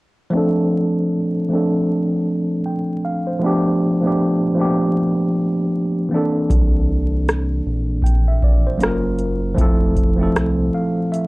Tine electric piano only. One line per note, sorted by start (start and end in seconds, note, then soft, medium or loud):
0.30 1.06 F3 loud
0.30 1.07 A3 medium
0.30 1.08 C4 medium
0.35 1.09 D4 medium
0.35 1.10 A4 loud
1.49 2.51 F3 medium
1.49 2.52 A3 medium
1.49 2.52 C4 medium
1.53 2.53 D4 medium
1.53 2.54 A4 medium
2.66 3.02 G5 medium
3.05 3.26 F5 medium
3.27 3.63 C5 medium
3.39 3.78 F3 medium
3.39 3.78 A3 medium
3.39 3.79 B3 loud
3.44 3.80 D4 medium
3.44 3.81 G4 loud
4.00 4.38 F3 medium
4.00 4.39 A3 medium
4.00 4.40 B3 medium
4.06 4.41 D4 medium
4.06 4.42 G4 medium
4.54 5.58 F3 medium
4.54 5.59 A3 medium
4.54 4.66 A#3 medium
4.60 5.60 D4 medium
4.60 5.61 G4 medium
4.65 5.63 B3 medium
6.09 7.35 E3 medium
6.09 7.36 A#3 medium
6.09 7.36 C4 medium
6.14 7.38 D4 medium
6.14 7.38 A4 medium
8.04 8.26 G5 medium
8.28 8.42 E5 medium
8.44 8.65 D5 medium
8.67 9.03 C5 medium
8.77 9.44 F#3 medium
8.77 9.45 A#3 medium
8.77 9.46 C#4 medium
8.82 9.46 F4 medium
8.82 9.47 A#4 medium
9.54 9.93 F3 loud
9.54 9.94 A3 loud
9.54 9.95 C4 medium
9.60 9.96 E4 medium
9.60 9.96 A4 loud
10.16 10.54 F3 medium
10.16 10.55 A3 medium
10.16 10.56 C4 medium
10.21 10.57 E4 medium
10.21 10.57 A4 medium
10.74 11.10 F5 medium
11.12 11.27 E5 medium